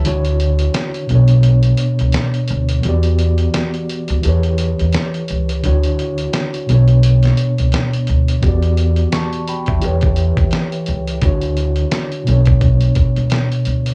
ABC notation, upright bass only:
X:1
M:4/4
L:1/16
Q:"Swing 16ths" 1/4=86
K:Bm
V:1 name="Upright bass" clef=bass
D,,4 z2 B,,,4 z C,, z2 D,,2 | E,,4 z3 D,, E,,3 E,, z2 C,,2 | D,,4 z2 B,,,4 z C,, z2 D,,2 | E,,4 z3 D,, E,,3 E,, z2 C,,2 |
D,,4 z2 B,,,4 z C,, z2 D,,2 |]